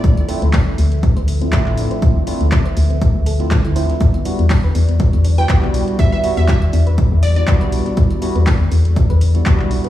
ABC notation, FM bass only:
X:1
M:4/4
L:1/16
Q:"Swing 16ths" 1/4=121
K:Ephr
V:1 name="FM bass" clef=bass
D,, z2 D,,3 D,,3 D,,3 A,,,3 z | D,, z2 D,,3 D,,3 D,,3 D,,3 z | E,, z2 E,,3 E,,3 E,,3 B,,,3 z | E,, z2 E,,3 E,,3 E,,3 B,,,3 z |
E,, z2 E,,3 E,,3 E,,3 B,,,3 z |]